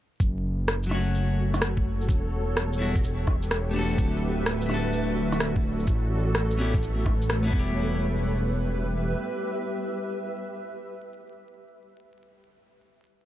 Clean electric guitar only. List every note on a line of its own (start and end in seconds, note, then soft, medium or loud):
0.87 2.06 F#3 medium
0.87 2.07 A3 medium
0.92 2.09 C#4 medium
0.92 2.10 F#4 medium
2.78 2.95 G3 medium
2.78 2.96 B3 medium
2.78 2.97 E4 medium
2.78 2.97 F#4 medium
3.71 4.65 A3 medium
3.71 4.67 D4 medium
3.76 4.68 F#4 medium
3.76 4.69 A4 loud
4.66 5.85 A3 medium
4.66 5.86 D4 medium
4.71 5.87 F#4 medium
4.71 5.89 A4 medium
6.58 6.74 B3 medium
6.58 6.75 C#4 medium
6.58 6.75 E4 medium
6.58 6.76 G4 medium
7.43 7.47 B3 medium
7.43 7.47 C#4 medium
7.43 7.53 E4 medium
7.47 10.60 G3 medium
7.47 7.54 B4 medium
7.51 10.64 B3 medium
7.55 10.68 E4 medium
7.59 10.72 G4 medium